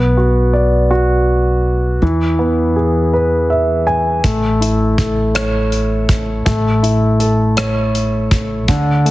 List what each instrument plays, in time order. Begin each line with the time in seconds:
Already playing: upright bass B1, grand piano B3
0.17 grand piano F#4
0.53 grand piano D5
0.91 grand piano F#4
2.02 upright bass E2, grand piano E3
2.39 grand piano B3
2.76 grand piano G#4
3.13 grand piano B4
3.50 grand piano E5
3.87 grand piano G#5
4.24 upright bass A1, grand piano A3, kick, closed hi-hat
4.61 grand piano E4, closed hi-hat
4.98 kick, closed hi-hat
5.35 grand piano C#5, cross-stick, closed hi-hat
5.72 closed hi-hat
6.09 kick, closed hi-hat
6.46 upright bass A1, grand piano A3, kick, closed hi-hat
6.83 grand piano E4, closed hi-hat
7.20 grand piano A4, closed hi-hat
7.57 grand piano C#5, cross-stick, closed hi-hat
7.95 closed hi-hat
8.31 kick, closed hi-hat
8.68 upright bass D2, grand piano D3, kick, closed hi-hat
9.05 grand piano A3, closed hi-hat